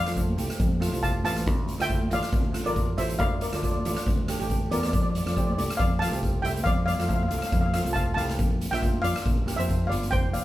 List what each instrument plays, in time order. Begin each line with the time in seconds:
Already playing: steel pan D5 F5
0.05 fingered electric bass F2, steel pan A3 C4 F4, cross-stick, closed hi-hat
0.17 steel pan A3 C4 D4, kick, closed hi-hat
0.28 high conga
0.37 fingered electric bass C2, steel pan A3 C4 G4, closed hi-hat, low conga
0.50 cross-stick, closed hi-hat
0.60 fingered electric bass F2, kick, closed hi-hat
0.72 high conga, low conga
0.80 steel pan A3 C4 F4, cross-stick, closed hi-hat
0.92 fingered electric bass C2, steel pan A3 C4 F4, closed hi-hat
1.03 steel pan F5 A5, kick, closed hi-hat
1.23 fingered electric bass A1, steel pan A3 C4 F4 F5 A5, closed hi-hat, low conga
1.36 cross-stick, closed hi-hat, high conga
1.47 fingered electric bass D2, kick, closed hi-hat
1.68 closed hi-hat, high conga
1.78 fingered electric bass D2, steel pan A3 D4 F4 E5 G5, cross-stick, closed hi-hat
1.88 steel pan A3 D4 E4, kick, closed hi-hat
2.02 high conga
2.09 fingered electric bass A1, steel pan A3 D4 F4 F5, closed hi-hat, low conga
2.14 steel pan D5
2.23 cross-stick, closed hi-hat
2.32 fingered electric bass D2, kick, closed hi-hat
2.45 high conga, low conga
2.52 steel pan A3 D4 F4, cross-stick, closed hi-hat
2.64 fingered electric bass A1, steel pan A3 D4 F4 A#4 D5, closed hi-hat
2.76 kick, closed hi-hat
2.97 fingered electric bass A1, steel pan A3 D4 F4 C5 E5, closed hi-hat, low conga
3.09 closed hi-hat, high conga
3.19 fingered electric bass D2, steel pan D5 F5, kick, closed hi-hat
3.41 steel pan A#4 D5, closed hi-hat
3.48 steel pan D5
3.52 fingered electric bass D2, steel pan A3 D4 F4 D5, cross-stick, closed hi-hat
3.62 steel pan A3 D4 F4 D5, kick, closed hi-hat
3.71 steel pan D5, high conga
3.78 steel pan D5
3.85 fingered electric bass A1, steel pan A3 D4 F4 D5, closed hi-hat, low conga
3.95 steel pan D5, cross-stick, closed hi-hat
4.07 fingered electric bass D2, kick, closed hi-hat
4.17 high conga, low conga
4.28 steel pan A3 D4 G4, cross-stick, closed hi-hat
4.39 fingered electric bass A1, steel pan A3 D4 G4, closed hi-hat
4.50 kick, closed hi-hat
4.70 fingered electric bass E2, steel pan A3 D4 F4 A#4 D5, closed hi-hat, low conga
4.79 steel pan D5, cross-stick, closed hi-hat, high conga
4.86 steel pan D5
4.93 fingered electric bass F2, steel pan D5, kick, closed hi-hat
5.03 steel pan D5
5.09 steel pan D5
5.15 steel pan D5, closed hi-hat
5.26 fingered electric bass F2, steel pan A3 C4 F4 D5, cross-stick, closed hi-hat
5.33 steel pan A3 D5, kick, closed hi-hat
5.37 steel pan C4 G4 D5
5.47 steel pan D5, high conga
5.53 steel pan D5
5.57 fingered electric bass C2, steel pan A3 C4 D4 D5, closed hi-hat, low conga
5.70 cross-stick, closed hi-hat
5.77 fingered electric bass F2, steel pan D5 F5, kick, closed hi-hat
5.92 high conga, low conga
5.99 steel pan A3 C4 F4 F5 A5, cross-stick, closed hi-hat
6.11 fingered electric bass C2, steel pan A3 C4 G4, closed hi-hat
6.23 kick, closed hi-hat
6.42 fingered electric bass C2, steel pan A3 C4 E4 E5 G5, closed hi-hat, low conga
6.56 closed hi-hat, high conga
6.64 fingered electric bass F2, steel pan D5 F5, kick, closed hi-hat
6.86 steel pan D5 F5, closed hi-hat, high conga
6.94 fingered electric bass F2, steel pan F5
6.98 steel pan A3 C4 F4 F5, cross-stick, closed hi-hat
7.08 steel pan A3 C4 E4 F5, kick, closed hi-hat
7.15 steel pan F5
7.22 steel pan F5, high conga
7.29 fingered electric bass C2, steel pan A3 C4 D4 F5, closed hi-hat, low conga
7.39 steel pan F5, cross-stick, closed hi-hat
7.47 steel pan F5
7.52 fingered electric bass F2, steel pan F5, kick, closed hi-hat
7.61 steel pan F5, high conga, low conga
7.66 steel pan F5
7.74 steel pan A3 C4 F4 F5, cross-stick, closed hi-hat
7.85 fingered electric bass C2, steel pan A3 C4 F4, closed hi-hat
7.93 steel pan F5 A5, kick, closed hi-hat
8.14 fingered electric bass C2, steel pan A3 F5 A5, closed hi-hat, low conga
8.18 steel pan C4 G4
8.29 cross-stick, closed hi-hat, high conga
8.39 fingered electric bass A#1, kick, closed hi-hat
8.61 closed hi-hat, high conga
8.71 fingered electric bass A#1, steel pan A#3 D4 F4 E5 G5, cross-stick, closed hi-hat
8.81 steel pan A#3 D4 F4, kick, closed hi-hat
8.93 high conga
9.02 fingered electric bass F2, steel pan A#3 D4 F4 D5 F5, closed hi-hat, low conga
9.16 cross-stick, closed hi-hat
9.26 fingered electric bass A#1, kick, closed hi-hat
9.37 high conga, low conga
9.46 steel pan A#3 D4 G4, cross-stick, closed hi-hat
9.56 fingered electric bass F2, steel pan A#3 D4 F4 C5 E5, closed hi-hat
9.69 kick, closed hi-hat
9.87 fingered electric bass G1, steel pan A#3 D4 F4 D5 F5, low conga
9.92 closed hi-hat
10.02 closed hi-hat, high conga
10.11 fingered electric bass F1, steel pan C5 G5, kick, closed hi-hat
10.33 steel pan D5 F5, closed hi-hat, high conga
10.41 steel pan F5